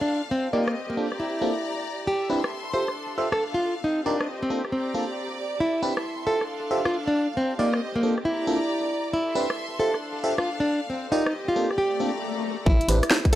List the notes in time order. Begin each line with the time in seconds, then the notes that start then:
Already playing: D4 A4 F5
0.01 D4
0.31 C4
0.52 A#3 D#4 F4 G4 A#4 D5
0.63 D#5
0.68 cross-stick
0.90 A#3
0.97 A#3 C4 D4 F4 A4
1.04 D5
1.12 A#5, cross-stick
1.20 E4
1.41 A#3 C4 D4 F4 A4
2.07 G4 A4
2.13 E5
2.30 C4 D4 E4 G4 B4
2.37 C6
2.44 cross-stick
2.73 D4 F4 G4 A4 C5 E5
2.88 cross-stick
3.16 F4 G4 A4 C5 E5 F5
3.32 A4, cross-stick
3.54 F4
3.84 C4 D#4
3.96 G4
4.06 D4 D#4 F4 G4 A#4 D5
4.16 D#5
4.21 cross-stick
4.43 C4
4.50 A#3 C4 D4 F4 A4
4.65 cross-stick
4.71 C4 D5 A#5
4.94 A#3 C4 D4 F4 A4
5.60 E4 A4
5.73 E5
5.83 C4 D4 E4 G4 B4
5.92 C6
5.97 cross-stick
6.26 D4 F4 G4 A4 C5 E5
6.41 F5, cross-stick
6.71 F4 G4 A4 C5 E5
6.85 F4, cross-stick
7.07 D4
7.37 C4
7.50 G4
7.59 A#3 D#4 F4 G4 A#4 D5
7.67 D#5
7.74 cross-stick
7.96 A#3
8.03 A#3 C4 D4 F4 A4
8.18 cross-stick
8.25 E4
8.30 D5 A#5
8.47 A#3 C4 D4 F4 A4
9.13 E4 A4
9.29 E5 C6
9.35 C4 D4 E4 G4 B4
9.50 cross-stick
9.80 D4 F4 G4 A4 C5 E5
9.94 cross-stick
10.09 F5
10.24 F4 G4 A4 C5 E5
10.38 F4, cross-stick
10.60 D4
10.90 C4
11.07 G4
11.12 D#4 F4 G4 A#4 D5
11.22 D#5
11.26 cross-stick
11.48 F4
11.56 A#3 C4 D4 F4 A4
11.68 D5, cross-stick
11.78 G4, swell
12.00 A#3 C4 D4 F4 A4
12.05 A#5
12.66 A1 E4, kick
12.81 closed hi-hat
12.88 A1 C4 D4 E4 G4 B4, open hi-hat
13.03 cross-stick, closed hi-hat
13.11 snare
13.25 kick, closed hi-hat